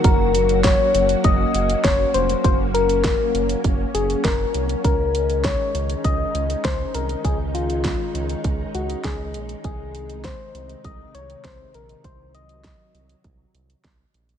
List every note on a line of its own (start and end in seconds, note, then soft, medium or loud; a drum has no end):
0.00 4.80 F#3 medium
0.00 4.81 F#4 medium
0.04 0.76 F#1 loud
0.04 4.80 A#3 medium
0.04 9.61 C#4 medium
0.04 0.61 A#4 loud
0.04 kick loud
0.04 closed hi-hat medium
0.35 closed hi-hat medium
0.49 closed hi-hat soft
0.64 1.20 C#5 loud
0.64 kick loud
0.64 snare loud
0.64 closed hi-hat medium
0.94 1.15 F#1 loud
0.94 closed hi-hat medium
1.09 closed hi-hat medium
1.24 1.45 F#1 loud
1.24 1.86 D#5 loud
1.24 kick loud
1.24 closed hi-hat medium
1.54 1.75 F#1 loud
1.54 closed hi-hat medium
1.70 closed hi-hat medium
1.84 2.05 F#1 loud
1.84 2.16 C#5 loud
1.84 kick loud
1.84 snare loud
1.84 closed hi-hat medium
2.14 2.35 F1 medium
2.14 2.44 C5 loud
2.14 closed hi-hat medium
2.29 closed hi-hat soft
2.44 3.16 F#1 loud
2.44 2.58 C5 loud
2.44 kick loud
2.44 closed hi-hat medium
2.74 3.60 A#4 medium
2.74 closed hi-hat medium
2.89 closed hi-hat soft
3.04 kick loud
3.04 snare loud
3.04 closed hi-hat medium
3.34 3.55 F#1 loud
3.34 closed hi-hat medium
3.49 closed hi-hat medium
3.64 3.85 F#1 loud
3.64 kick loud
3.64 closed hi-hat medium
3.94 4.15 F#1 loud
3.94 4.22 G#4 medium
3.94 closed hi-hat medium
4.10 closed hi-hat medium
4.24 4.45 F#1 loud
4.24 4.80 A#4 medium
4.24 kick loud
4.24 snare loud
4.24 closed hi-hat medium
4.54 4.76 C2 medium
4.54 closed hi-hat medium
4.69 closed hi-hat soft
4.84 5.56 C#2 loud
4.84 9.61 D#3 medium
4.84 12.00 G#3 medium
4.84 14.38 D#4 loud
4.84 5.46 A#4 loud
4.84 kick loud
4.84 closed hi-hat medium
5.15 closed hi-hat medium
5.30 closed hi-hat soft
5.44 6.04 C#5 loud
5.44 kick loud
5.44 snare loud
5.44 closed hi-hat medium
5.74 5.95 C#2 loud
5.74 closed hi-hat medium
5.90 closed hi-hat medium
6.04 6.26 C#2 loud
6.04 6.66 D#5 loud
6.04 kick loud
6.04 closed hi-hat medium
6.35 6.55 C#2 loud
6.35 closed hi-hat medium
6.50 closed hi-hat medium
6.64 6.86 C#2 loud
6.64 6.96 C5 loud
6.64 kick loud
6.64 snare loud
6.64 closed hi-hat medium
6.94 7.16 C2 medium
6.94 7.24 A#4 medium
6.94 closed hi-hat medium
7.09 closed hi-hat soft
7.24 7.96 C#2 loud
7.24 7.38 G#4 loud
7.24 kick loud
7.24 closed hi-hat medium
7.54 8.40 F4 medium
7.54 closed hi-hat medium
7.70 closed hi-hat soft
7.84 kick loud
7.84 snare loud
7.84 closed hi-hat medium
8.15 8.35 C#2 loud
8.15 closed hi-hat medium
8.29 closed hi-hat medium
8.44 8.65 C#2 loud
8.44 kick loud
8.44 closed hi-hat medium
8.74 8.95 C#2 loud
8.74 9.06 F#4 medium
8.74 closed hi-hat medium
8.90 closed hi-hat medium
9.04 9.36 C#2 loud
9.04 9.64 G#4 medium
9.04 kick loud
9.04 snare loud
9.04 closed hi-hat medium
9.34 9.55 A#1 medium
9.34 closed hi-hat medium
9.49 closed hi-hat soft
9.64 10.36 C2 loud
9.64 14.38 C3 medium
9.64 14.38 D#3 medium
9.64 10.26 G#4 loud
9.64 kick loud
9.64 closed hi-hat medium
9.95 closed hi-hat medium
10.10 closed hi-hat soft
10.24 10.86 C5 loud
10.24 kick loud
10.24 snare loud
10.24 closed hi-hat medium
10.54 10.75 C2 medium
10.54 closed hi-hat medium
10.69 closed hi-hat medium
10.84 11.05 C2 loud
10.84 11.16 D#5 loud
10.84 kick loud
10.84 closed hi-hat medium
11.14 11.35 C2 loud
11.14 11.46 C#5 loud
11.14 closed hi-hat medium
11.30 closed hi-hat medium
11.44 11.65 C2 loud
11.44 11.76 C5 loud
11.44 kick loud
11.44 snare loud
11.44 closed hi-hat medium
11.74 11.95 A#1 medium
11.74 12.06 A#4 medium
11.74 closed hi-hat medium
11.89 closed hi-hat soft
12.04 12.76 C2 loud
12.04 14.38 F#3 medium
12.04 12.36 C5 loud
12.04 kick loud
12.04 closed hi-hat medium
12.35 13.25 D#5 loud
12.35 closed hi-hat medium
12.49 closed hi-hat soft
12.64 kick loud
12.64 snare loud
12.64 closed hi-hat medium
12.94 13.15 C2 medium
12.94 closed hi-hat medium
13.09 closed hi-hat medium
13.24 13.45 C2 loud
13.24 kick loud
13.24 closed hi-hat medium
13.54 13.75 C2 loud
13.54 closed hi-hat medium
13.70 closed hi-hat medium
13.84 14.05 C2 loud
13.84 kick loud
13.84 snare loud
13.84 closed hi-hat medium
14.14 14.35 A#1 medium
14.14 closed hi-hat medium
14.29 closed hi-hat soft